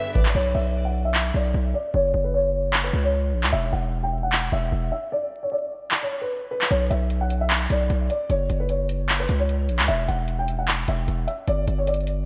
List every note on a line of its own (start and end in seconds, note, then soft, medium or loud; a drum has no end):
0.00 0.33 G2 medium
0.00 0.33 D3 medium
0.00 0.33 B3 medium
0.00 0.32 G4 medium
0.00 0.13 B4 medium
0.00 0.14 E5 medium
0.15 0.33 B4 medium
0.15 0.34 D5 medium
0.15 kick medium
0.15 closed hi-hat medium
0.26 clap loud
0.35 0.54 B1 loud
0.35 0.52 C#5 loud
0.35 crash loud
0.54 1.31 B1 loud
0.54 0.83 E5 medium
0.85 1.03 F#5 medium
1.05 1.33 E5 medium
1.14 clap loud
1.34 1.53 B1 loud
1.34 1.72 D5 medium
1.54 1.73 B1 loud
1.74 1.91 D5 medium
1.94 2.13 F#1 loud
1.94 2.23 C#5 loud
2.14 2.90 F#1 loud
2.24 2.32 B4 medium
2.34 2.81 C#5 medium
2.73 clap loud
2.84 3.01 B4 medium
2.93 3.35 C#2 loud
3.04 3.50 C#5 medium
3.33 3.45 A#1 loud
3.44 3.52 C#2 loud
3.44 clap loud
3.52 3.72 E1 loud
3.52 3.70 E5 loud
3.73 4.49 E1 loud
3.73 4.01 F#5 medium
4.03 4.21 G5 medium
4.23 4.50 F#5 medium
4.32 clap loud
4.52 4.71 E1 loud
4.52 4.90 E5 medium
4.72 4.91 E1 loud
4.92 5.09 E5 medium
5.12 5.41 D5 loud
5.43 5.51 C#5 medium
5.52 5.99 D5 medium
5.91 clap loud
6.02 6.20 C#5 medium
6.21 6.49 B4 medium
6.51 6.68 B4 medium
6.61 clap loud
6.70 6.90 B1 loud
6.70 6.88 C#5 loud
6.70 closed hi-hat medium
6.90 7.67 B1 loud
6.90 7.19 E5 medium
6.90 closed hi-hat medium
7.10 closed hi-hat medium
7.21 7.38 F#5 medium
7.30 closed hi-hat medium
7.41 7.68 E5 medium
7.50 clap loud
7.50 closed hi-hat medium
7.70 7.89 B1 loud
7.70 8.08 D5 medium
7.70 closed hi-hat medium
7.90 8.09 B1 loud
7.90 closed hi-hat medium
8.10 8.27 D5 medium
8.10 closed hi-hat medium
8.30 8.49 F#1 loud
8.30 8.59 C#5 loud
8.30 closed hi-hat medium
8.50 9.26 F#1 loud
8.50 closed hi-hat medium
8.60 8.68 B4 medium
8.69 9.17 C#5 medium
8.69 closed hi-hat medium
8.89 closed hi-hat medium
9.09 clap loud
9.09 closed hi-hat medium
9.20 9.37 B4 medium
9.29 9.70 C#2 loud
9.29 closed hi-hat medium
9.39 9.86 C#5 medium
9.49 closed hi-hat medium
9.69 9.81 A#1 loud
9.69 closed hi-hat medium
9.79 9.88 C#2 loud
9.79 clap loud
9.88 10.08 E1 loud
9.88 10.06 E5 loud
9.88 closed hi-hat medium
10.08 10.85 E1 loud
10.08 10.37 F#5 medium
10.08 closed hi-hat medium
10.28 closed hi-hat medium
10.39 10.56 G5 medium
10.48 closed hi-hat medium
10.59 10.86 F#5 medium
10.68 clap loud
10.68 closed hi-hat medium
10.88 11.07 E1 loud
10.88 11.26 E5 medium
10.88 closed hi-hat medium
11.08 11.27 E1 loud
11.08 closed hi-hat medium
11.27 11.45 E5 medium
11.27 closed hi-hat medium
11.48 11.67 G1 loud
11.48 11.76 D5 loud
11.48 closed hi-hat medium
11.68 12.25 G1 loud
11.68 closed hi-hat medium
11.78 11.86 C#5 medium
11.87 12.26 D5 medium
11.87 closed hi-hat medium
11.94 closed hi-hat medium
12.01 closed hi-hat soft
12.07 closed hi-hat medium